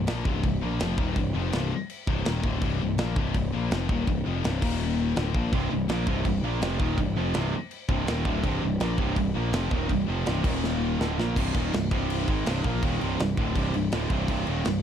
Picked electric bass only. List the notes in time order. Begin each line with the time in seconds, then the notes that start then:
0.08 A#1
0.25 C1
0.43 C1
0.62 A#1
0.81 F1
0.98 D#1
1.16 C1
1.36 F1
1.55 C1
2.07 C1
2.26 D#1
2.44 D1
2.62 C1
2.82 C1
3.00 A#1
3.17 C1
3.34 C1
3.53 A#1
3.71 F1
3.89 D#1
4.07 C1
4.26 F1
4.44 C1
4.63 D#1
5.17 D1
5.35 A#1
5.53 C1
5.71 C1
5.89 A#1
6.07 C1
6.25 C1
6.43 A#1
6.62 F1
6.79 D#1
6.98 C1
7.17 F1
7.36 C1
7.89 C1
8.08 D#1
8.25 D1
8.44 C1
8.62 C1
8.81 A#1
8.98 C1
9.16 C1
9.35 A#1
9.53 F1
9.71 D#1
9.89 C1
10.08 F1
10.26 C1
10.44 D#1
10.99 D1
11.18 A#1
11.36 C1
11.55 D#1
11.74 C1
11.91 C1
12.28 G#1
12.46 C1
12.64 A#1
12.83 D#1
13.01 C1
13.19 C1
13.37 D1
13.56 C1
13.74 C1
13.93 D1
14.10 C1
14.28 C1
14.47 D#1
14.66 C1